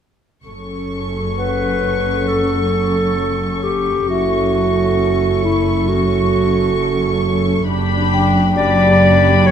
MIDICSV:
0, 0, Header, 1, 7, 480
1, 0, Start_track
1, 0, Tempo, 909091
1, 242, Time_signature, 4, 2, 24, 8
1, 2160, Tempo, 896861
1, 5062, End_track
2, 0, Start_track
2, 0, Title_t, "Violin section"
2, 0, Program_c, 0, 48
2, 241, Note_on_c, 0, 85, 30
2, 2140, Note_off_c, 0, 85, 0
2, 2162, Note_on_c, 0, 85, 35
2, 4058, Note_off_c, 0, 85, 0
2, 4079, Note_on_c, 0, 83, 51
2, 4537, Note_off_c, 0, 83, 0
2, 4557, Note_on_c, 0, 83, 55
2, 5062, Note_off_c, 0, 83, 0
2, 5062, End_track
3, 0, Start_track
3, 0, Title_t, "Vibraphone"
3, 0, Program_c, 1, 11
3, 337, Control_c, 1, 64, 127
3, 729, Note_on_c, 1, 78, 25
3, 2143, Note_off_c, 1, 78, 0
3, 2163, Note_on_c, 1, 64, 21
3, 2166, Note_on_c, 1, 76, 32
3, 3582, Note_off_c, 1, 64, 0
3, 3583, Note_off_c, 1, 76, 0
3, 4088, Control_c, 1, 64, 0
3, 4185, Control_c, 1, 64, 127
3, 4326, Note_on_c, 1, 79, 52
3, 5062, Note_off_c, 1, 79, 0
3, 5062, End_track
4, 0, Start_track
4, 0, Title_t, "Clarinet"
4, 0, Program_c, 2, 71
4, 724, Note_on_c, 2, 71, 47
4, 1201, Note_on_c, 2, 69, 36
4, 1209, Note_off_c, 2, 71, 0
4, 1921, Note_on_c, 2, 67, 43
4, 1929, Note_off_c, 2, 69, 0
4, 2159, Note_on_c, 2, 66, 48
4, 2167, Note_off_c, 2, 67, 0
4, 2880, Note_off_c, 2, 66, 0
4, 2885, Note_on_c, 2, 64, 49
4, 3121, Note_on_c, 2, 66, 50
4, 3129, Note_off_c, 2, 64, 0
4, 4079, Note_off_c, 2, 66, 0
4, 4556, Note_on_c, 2, 74, 74
4, 5037, Note_on_c, 2, 73, 74
4, 5045, Note_off_c, 2, 74, 0
4, 5062, Note_off_c, 2, 73, 0
4, 5062, End_track
5, 0, Start_track
5, 0, Title_t, "Viola section"
5, 0, Program_c, 3, 48
5, 244, Note_on_c, 3, 69, 28
5, 245, Note_on_c, 3, 61, 27
5, 2141, Note_off_c, 3, 69, 0
5, 2142, Note_off_c, 3, 61, 0
5, 2162, Note_on_c, 3, 61, 33
5, 2163, Note_on_c, 3, 69, 34
5, 4058, Note_off_c, 3, 61, 0
5, 4058, Note_off_c, 3, 69, 0
5, 4079, Note_on_c, 3, 62, 51
5, 4080, Note_on_c, 3, 67, 48
5, 4537, Note_off_c, 3, 62, 0
5, 4538, Note_off_c, 3, 67, 0
5, 4558, Note_on_c, 3, 62, 55
5, 4559, Note_on_c, 3, 67, 58
5, 5062, Note_off_c, 3, 62, 0
5, 5062, Note_off_c, 3, 67, 0
5, 5062, End_track
6, 0, Start_track
6, 0, Title_t, "Cello section"
6, 0, Program_c, 4, 48
6, 241, Note_on_c, 4, 42, 32
6, 2140, Note_off_c, 4, 42, 0
6, 2162, Note_on_c, 4, 42, 36
6, 4058, Note_off_c, 4, 42, 0
6, 4078, Note_on_c, 4, 42, 53
6, 5062, Note_off_c, 4, 42, 0
6, 5062, End_track
7, 0, Start_track
7, 0, Title_t, "Double bass section"
7, 0, Program_c, 5, 48
7, 240, Note_on_c, 5, 30, 32
7, 2139, Note_off_c, 5, 30, 0
7, 2158, Note_on_c, 5, 30, 39
7, 4056, Note_off_c, 5, 30, 0
7, 4076, Note_on_c, 5, 30, 59
7, 5062, Note_off_c, 5, 30, 0
7, 5062, End_track
0, 0, End_of_file